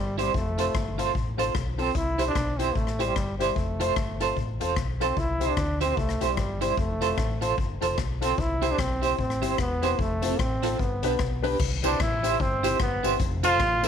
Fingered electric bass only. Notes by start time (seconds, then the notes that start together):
Already playing: G1
0.34 F1
0.74 G1
1.15 A1
1.55 B1
1.95 C2
2.35 B1
2.76 A1
3.16 G1
3.56 F1
3.96 G1
4.36 A1
4.61 E1
4.77 B1
5.17 C2
5.57 D2
5.97 C2
6.21 B1
6.37 G1
6.77 F1
7.17 A1
7.58 G1
7.81 F1
7.98 B1
8.38 C2
8.78 B1
9.18 A1
9.42 G1
9.59 E1
9.99 F1
10.39 A1
10.79 G1
11.03 B1
11.19 B1
11.60 C2
11.99 A1
12.40 G1
12.80 G1
13.03 G1
13.20 F1
13.60 A1